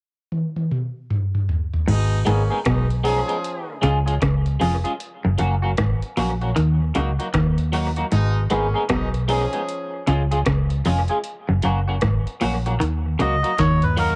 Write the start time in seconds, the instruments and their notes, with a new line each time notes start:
0.32 high tom
0.57 high tom
0.72 mid tom
1.10 mid tom
1.35 mid tom
1.49 floor tom
1.73 floor tom
1.87 fingered electric bass G#1, clean electric guitar G#2, horn section B2 G#3 D#4, crash
2.25 fingered electric bass G#1, clean electric guitar G#2 G#3 B3 D#4 G#4, horn section C#3 A#3 C#4, closed hi-hat
2.50 clean electric guitar G#3 B3 D#4 G#4
2.65 fingered electric bass B1, horn section B2 G#3 D#4, clean electric guitar B2, kick, cross-stick, closed hi-hat
2.90 closed hi-hat
3.04 horn section F3 C#4 G#4, clean electric guitar G#3 B3 D#4 G#4, open hi-hat
3.28 clean electric guitar G#3 B3 D#4 G#4, closed hi-hat
3.44 closed hi-hat
3.82 fingered electric bass C#2, clean electric guitar C#3 G#3 C#4 F4 G#4, closed hi-hat
4.06 clean electric guitar G#3 C#4 F4 G#4, closed hi-hat
4.22 fingered electric bass C#2, clean electric guitar C#3, kick, cross-stick, closed hi-hat
4.46 closed hi-hat
4.60 fingered electric bass F1, clean electric guitar F2 G#3 C#4 F4 G#4, open hi-hat
4.84 clean electric guitar G#3 C#4 F4 G#4, closed hi-hat
5.00 closed hi-hat
5.25 fingered electric bass F#1, clean electric guitar F#2
5.38 fingered electric bass F#1, clean electric guitar F#2 F#3 A#3 C#4 F#4, closed hi-hat
5.62 clean electric guitar F#3 A#3 C#4 F#4
5.77 fingered electric bass G#1, clean electric guitar G#2, kick, cross-stick, closed hi-hat
6.02 closed hi-hat
6.17 fingered electric bass A#1, clean electric guitar A#2 F#3 A#3 C#4 F#4, open hi-hat
6.41 clean electric guitar F#3 A#3 C#4 F#4, closed hi-hat
6.56 fingered electric bass D#2, clean electric guitar D#3, closed hi-hat
6.95 fingered electric bass C#2, clean electric guitar C#3 F#3 A#3 D#4 F#4, closed hi-hat
7.19 clean electric guitar F#3 A#3 D#4 F#4, closed hi-hat
7.34 fingered electric bass D#2, clean electric guitar D#3, kick, cross-stick, closed hi-hat
7.58 closed hi-hat
7.72 clean electric guitar F#3 A#3 D#4 F#4, open hi-hat
7.96 clean electric guitar F#3 A#3 D#4 F#4, closed hi-hat
8.12 fingered electric bass G#1, clean electric guitar G#2, horn section B2 G#3 D#4, closed hi-hat
8.50 fingered electric bass G#1, clean electric guitar G#2 G#3 B3 D#4 G#4, horn section C#3 A#3 C#4, closed hi-hat
8.74 clean electric guitar G#3 B3 D#4 G#4
8.89 fingered electric bass B1, clean electric guitar B2, horn section B2 G#3 D#4, kick, cross-stick, closed hi-hat
9.14 closed hi-hat
9.28 horn section F3 C#4 G#4, clean electric guitar G#3 B3 D#4 G#4, open hi-hat
9.53 clean electric guitar G#3 B3 D#4 G#4, closed hi-hat
9.69 closed hi-hat
10.07 fingered electric bass C#2, clean electric guitar C#3 G#3 C#4 F4 G#4, closed hi-hat
10.31 clean electric guitar G#3 C#4 F4 G#4, closed hi-hat
10.46 fingered electric bass C#2, clean electric guitar C#3, kick, cross-stick, closed hi-hat
10.70 closed hi-hat
10.85 fingered electric bass F1, clean electric guitar F2 G#3 C#4 F4 G#4, open hi-hat
11.08 clean electric guitar G#3 C#4 F4 G#4, closed hi-hat
11.24 closed hi-hat
11.49 fingered electric bass F#1, clean electric guitar F#2
11.62 fingered electric bass F#1, clean electric guitar F#2 F#3 A#3 C#4 F#4, closed hi-hat
11.87 clean electric guitar F#3 A#3 C#4 F#4
12.01 fingered electric bass G#1, clean electric guitar G#2, kick, cross-stick, closed hi-hat
12.27 closed hi-hat
12.41 fingered electric bass A#1, clean electric guitar A#2 F#3 A#3 C#4 F#4, open hi-hat
12.66 clean electric guitar F#3 A#3 C#4 F#4, closed hi-hat
12.80 fingered electric bass D#2, clean electric guitar D#3, closed hi-hat
13.19 fingered electric bass C#2, clean electric guitar C#3 F#3 A#3 D#4 F#4, melodica D#5, closed hi-hat
13.43 clean electric guitar F#3 A#3 D#4 F#4, closed hi-hat
13.58 fingered electric bass D#2, clean electric guitar D#3, melodica C#5, kick, snare, closed hi-hat
13.82 melodica B4, closed hi-hat, mid tom
13.97 clean electric guitar F#3 A#3 D#4 F#4, melodica A#4, open hi-hat
14.10 floor tom